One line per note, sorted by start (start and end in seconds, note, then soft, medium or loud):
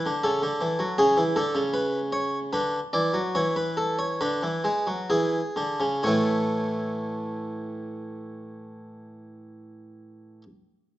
0.00 0.10 B4 medium
0.06 0.23 D3 medium
0.24 0.42 C#3 medium
0.24 0.96 A4 medium
0.42 0.60 D3 medium
0.61 0.79 E3 medium
0.79 0.97 F#3 medium
0.98 1.16 C#3 medium
0.98 1.22 G#4 loud
1.17 1.35 E3 medium
1.36 1.54 D3 medium
1.36 1.60 A4 medium
1.55 2.50 C#3 medium
1.74 1.98 B4 loud
2.12 2.37 C#5 medium
2.53 2.78 D3 medium
2.53 2.78 B4 medium
2.93 3.13 E3 medium
2.93 3.19 D5 medium
3.14 3.34 F#3 loud
3.35 4.18 E3 medium
3.35 3.55 C#5 medium
3.56 3.76 B4 medium
3.77 3.98 A4 medium
3.99 4.20 C#5 medium
4.21 4.42 D3 medium
4.21 5.07 B4 medium
4.43 4.64 E3 medium
4.64 4.86 G#3 medium
4.87 5.09 F#3 medium
5.10 5.39 E3 medium
5.10 6.01 G#4 medium
5.56 5.79 D3 medium
5.80 6.03 C#3 medium
6.03 10.42 A2 medium
6.03 10.43 E3 medium
6.03 10.43 A3 medium
6.03 10.42 C#5 medium